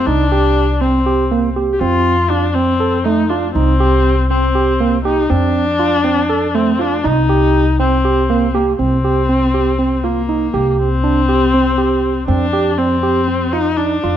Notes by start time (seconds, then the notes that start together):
0.07 C2 D4 D#4
0.32 G4
0.81 C4
1.06 G4
1.31 A#3
1.56 G4
1.73 G4
1.80 F2 C4 F4
2.30 D4 F4
2.54 C4
2.80 A4
3.05 A3 D#4
3.30 D4 F4
3.54 C2 C4 D#4
3.80 G4
4.30 C4
4.55 G4
4.80 A#3
5.05 D#4 G4
5.30 F2 C4 D4
5.79 F4
6.04 C4
6.30 A4
6.55 A3 C4
6.79 D4 F4
7.04 C2 D#4
7.29 G4
7.79 C4
8.05 G4
8.30 A#3
8.55 A#3 G4
8.79 C2 C4
9.04 G4
9.29 C4
9.54 G4
9.79 C4
10.04 A#3 F4
10.29 D#4
10.54 C2 G4
10.79 C4
11.04 D4
11.29 G4
11.54 C4
11.78 G4
12.28 F2 C4 D4
12.53 G4
12.78 C4
13.03 G4
13.28 C4
13.53 D#4 F4
13.77 D4 D#4
14.03 F2 F4